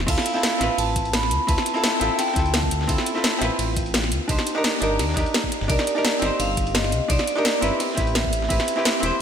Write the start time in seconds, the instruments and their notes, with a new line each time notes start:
0.00 snare
0.07 detuned saw bass D2, hollow-body jazz guitar C4 E4 F4 A4, vibraphone F5, kick, closed hi-hat, crash, ride
0.18 snare
0.26 closed hi-hat
0.34 hollow-body jazz guitar C4 E4 F4 A4, snare
0.43 snare, closed hi-hat, ride
0.58 detuned saw bass A1, hollow-body jazz guitar C4 E4 F4, snare, closed hi-hat
0.64 hollow-body jazz guitar B4
0.78 detuned saw bass A1, vibraphone A5, closed hi-hat, ride
0.96 kick, closed hi-hat
1.05 closed hi-hat
1.13 vibraphone B5, snare, closed hi-hat, ride
1.23 snare, closed hi-hat
1.31 detuned saw bass D2, closed hi-hat
1.47 detuned saw bass D2, hollow-body jazz guitar C4 E4 F4 B4, vibraphone A5, kick, closed hi-hat, ride
1.58 snare, closed hi-hat
1.66 closed hi-hat
1.74 hollow-body jazz guitar C4 E4 F4 A4
1.84 snare, closed hi-hat, ride
2.00 detuned saw bass A1, hollow-body jazz guitar C4 E4 F4 A4, closed hi-hat
2.19 vibraphone G5, snare, closed hi-hat, ride
2.28 snare
2.33 detuned saw bass D2, hollow-body jazz guitar C4 E4 F4, kick, snare, closed hi-hat
2.39 hollow-body jazz guitar A4
2.46 closed hi-hat
2.54 vibraphone A5, snare, closed hi-hat, ride
2.63 kick
2.71 detuned saw bass D2, closed hi-hat
2.81 snare
2.87 detuned saw bass D2, hollow-body jazz guitar C4 E4 F4 A4, kick, closed hi-hat, ride
2.98 snare
3.06 closed hi-hat
3.14 hollow-body jazz guitar C4 E4 F4 A4, snare
3.24 snare, closed hi-hat, ride
3.39 detuned saw bass A1, hollow-body jazz guitar C4 E4 F4, snare, closed hi-hat
3.44 hollow-body jazz guitar B4
3.59 detuned saw bass A1, closed hi-hat, ride
3.77 kick, closed hi-hat
3.86 closed hi-hat
3.94 snare, closed hi-hat, ride
4.04 snare, closed hi-hat
4.12 detuned saw bass D2, closed hi-hat
4.28 detuned saw bass C2, hollow-body jazz guitar D4 D#4 G4 C5, kick, closed hi-hat, ride
4.39 snare, closed hi-hat
4.47 closed hi-hat
4.55 hollow-body jazz guitar D4 D#4 G4 A#4
4.64 snare, closed hi-hat, ride
4.80 detuned saw bass G1, hollow-body jazz guitar D4 D#4 G4 A#4, closed hi-hat
4.99 detuned saw bass D#2, snare, closed hi-hat, ride
5.09 snare
5.14 detuned saw bass D#2, hollow-body jazz guitar D4 D#4 G4, kick, snare, closed hi-hat
5.20 hollow-body jazz guitar A#4
5.26 closed hi-hat
5.34 snare, closed hi-hat, ride
5.44 kick
5.52 closed hi-hat
5.61 detuned saw bass G1, snare
5.68 detuned saw bass C2, hollow-body jazz guitar D4 D#4 G4 A#4, vibraphone D5, kick, closed hi-hat, ride
5.79 snare
5.87 closed hi-hat
5.95 hollow-body jazz guitar D4 D#4 G4 A#4, snare
6.05 snare, closed hi-hat, ride
6.19 detuned saw bass G1, hollow-body jazz guitar C4 D#4 G4, snare, closed hi-hat
6.25 hollow-body jazz guitar C5
6.40 detuned saw bass G1, vibraphone F5, closed hi-hat, ride
6.57 kick, closed hi-hat
6.67 closed hi-hat
6.75 vibraphone D#5, snare, closed hi-hat, ride
6.84 snare, closed hi-hat
6.92 detuned saw bass C2, closed hi-hat
7.08 detuned saw bass C2, hollow-body jazz guitar D4 D#4 G4 C5, vibraphone D5, kick, closed hi-hat, ride
7.19 snare, closed hi-hat
7.27 closed hi-hat
7.35 hollow-body jazz guitar D4 D#4 G4 A#4
7.45 snare, closed hi-hat, ride
7.61 detuned saw bass G1, hollow-body jazz guitar C4 E4 G4 B4, vibraphone E5, closed hi-hat
7.80 snare, closed hi-hat, ride
7.90 snare
7.95 detuned saw bass A1, hollow-body jazz guitar C4 E4 G4, kick, snare, closed hi-hat
8.00 hollow-body jazz guitar B4
8.07 closed hi-hat
8.15 snare, closed hi-hat, ride
8.25 kick
8.33 detuned saw bass A1, closed hi-hat
8.42 snare
8.49 detuned saw bass A1, hollow-body jazz guitar C4 E4 G4 B4, kick, closed hi-hat, ride
8.60 snare
8.68 closed hi-hat
8.76 hollow-body jazz guitar C4 E4 G4 B4, snare
8.85 snare, closed hi-hat, ride
9.00 detuned saw bass E1, hollow-body jazz guitar C4 E4 G4, closed hi-hat
9.06 hollow-body jazz guitar C5